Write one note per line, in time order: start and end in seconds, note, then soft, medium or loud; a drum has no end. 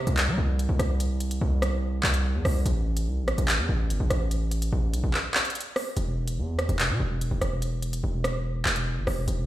0.07 0.29 C2 loud
0.07 closed hi-hat medium
0.17 clap loud
0.17 closed hi-hat loud
0.28 0.37 G3 loud
0.38 0.68 C2 loud
0.59 closed hi-hat medium
0.69 0.79 C2 loud
0.79 1.39 C2 loud
0.79 cross-stick medium
0.79 closed hi-hat loud
1.00 closed hi-hat medium
1.20 closed hi-hat medium
1.31 closed hi-hat medium
1.41 2.01 C2 loud
1.62 cross-stick loud
1.62 closed hi-hat medium
2.03 2.36 C2 loud
2.03 clap loud
2.14 closed hi-hat medium
2.34 2.44 E2 loud
2.45 2.65 C2 loud
2.45 cross-stick medium
2.45 open hi-hat medium
2.66 3.08 A1 loud
2.66 closed hi-hat medium
2.97 closed hi-hat medium
3.07 3.24 C2 loud
3.22 3.37 A1 loud
3.28 cross-stick medium
3.28 closed hi-hat soft
3.38 3.60 A1 loud
3.38 closed hi-hat medium
3.48 clap loud
3.48 closed hi-hat loud
3.59 3.68 E2 loud
3.69 3.91 A1 loud
3.90 4.00 G1 loud
3.90 closed hi-hat medium
4.00 4.10 A1 loud
4.10 4.70 A1 loud
4.10 cross-stick medium
4.10 closed hi-hat medium
4.31 closed hi-hat medium
4.51 closed hi-hat medium
4.62 closed hi-hat medium
4.72 4.95 A1 loud
4.93 5.03 B1 loud
4.93 closed hi-hat medium
5.04 5.13 A1 loud
5.14 clap medium
5.34 clap loud
5.45 closed hi-hat medium
5.50 closed hi-hat medium
5.55 closed hi-hat medium
5.60 closed hi-hat medium
5.76 cross-stick medium
5.76 open hi-hat medium
5.97 6.39 E1 loud
5.97 closed hi-hat medium
6.28 closed hi-hat medium
6.38 6.67 E2 loud
6.59 cross-stick medium
6.59 closed hi-hat soft
6.69 6.91 E1 loud
6.69 closed hi-hat medium
6.79 clap loud
6.79 closed hi-hat medium
6.90 7.00 B2 loud
7.00 7.30 E1 loud
7.21 closed hi-hat medium
7.31 7.41 E1 loud
7.41 8.01 E1 loud
7.41 cross-stick medium
7.41 closed hi-hat medium
7.62 closed hi-hat medium
7.82 closed hi-hat medium
7.93 closed hi-hat medium
8.04 8.63 E1 loud
8.24 cross-stick loud
8.24 closed hi-hat medium
8.65 8.98 E1 loud
8.65 clap loud
8.76 closed hi-hat medium
8.97 9.06 G1 loud
9.07 9.27 E1 loud
9.07 cross-stick medium
9.07 open hi-hat medium
9.28 9.46 E1 loud
9.28 closed hi-hat medium